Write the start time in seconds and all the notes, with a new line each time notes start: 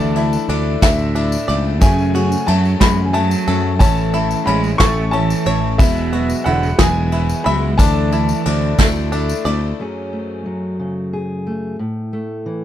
Already playing: D2 D3 E3 A3 D4 E4 A4 E5 A5
0.00 tambourine
0.16 A3 D4 E4 A4 E5, ride, tambourine
0.33 tambourine
0.48 D2 D3 A3 D4 E4 A4 E5, ride
0.81 D2 A2 D3 A3 D4 E4 A4 E5, kick, snare, ride, tambourine
0.99 tambourine
1.14 D3 A3 D4 E4 A4 E5, ride
1.32 tambourine
1.47 C#2 A3 D4 E4 A4 D5 E5, ride
1.80 F#1 F#2 C#3 F#3 A3 C#4 F#4 G#4 C#5 G#5, kick, ride, tambourine
1.98 tambourine
2.14 F#3 A3 C#4 F#4 G#4 C#5, ride
2.32 tambourine
2.46 F#2 F#3 A3 C#4 F#4 G#4 C#5 A5, ride
2.65 tambourine
2.80 F#2 C#3 F#3 G#3 A3 C#4 F#4 G#4 C#5 B5, kick, snare, ride, tambourine
3.05 E3 G#5
3.13 F#3 A3 C#4 F#4 G#4 C#5 A5, ride
3.31 tambourine
3.47 F#2 F#3 A3 C#4 F#4 G#4 A4 C#5, ride
3.79 A1 A2 E3 A3 C#4 E4 A4 C#5 E5 A5, kick, ride, tambourine
3.98 tambourine
4.13 A3 C#4 E4 A4 C#5 E5, ride
4.31 tambourine
4.45 A1 E3 G#3 A3 C#4 E4 C#5 E5 B5, ride
4.64 tambourine
4.78 A1 A2 E3 A3 C#4 E4 A4 C#5 E5 C#6, kick, snare, ride, tambourine
5.11 E3 A3 C#4 E4 C#5 E5 A5, ride
5.15 A4
5.30 tambourine
5.45 A1 A3 C#4 E4 A4 C#5 E5, ride
5.78 E1 E2 B2 E3 F#3 G#3 B3 E4 F#4 B4 E5, kick, ride, tambourine
5.97 tambourine
6.12 F#3 G#3 B3 E4 F#4 B4 E5, ride
6.30 tambourine
6.44 E1 D3 F#3 G#3 B3 E4 F#4 B4 E5 F#5, ride
6.48 E4
6.63 tambourine
6.78 E1 E2 B2 E3 F#3 G#3 B3 E4 F#4 G#4 B4 E5 G#5, kick, snare, ride, tambourine
7.12 F#3 G#3 B3 E4 F#4 B4 E5, ride
7.29 tambourine
7.44 C#2 F#3 G#3 B3 E4 F#4 B4 E5 B5, ride
7.78 D2 D3 E3 A3 D4 E4 D5 E5 A5, kick, ride, tambourine
8.12 A3 E4 D5 E5, ride, tambourine
8.29 tambourine
8.45 D2 D3 A3 D4 E4 D5 E5, ride, tambourine
8.79 D2 D3 A3 D4 E4 A4 D5 E5, kick, snare, ride, tambourine
8.96 tambourine
9.11 D3 A3 D4 E4 D5 E5, ride, tambourine
9.29 tambourine
9.45 D2 A3 D4 E4 D5 E5, ride
9.79 F#2 F#3 A3 C#4 G#4
10.13 A3
10.46 F#3
10.79 C#3
11.13 G#4
11.47 A3
11.79 A2
12.13 A3
12.46 E3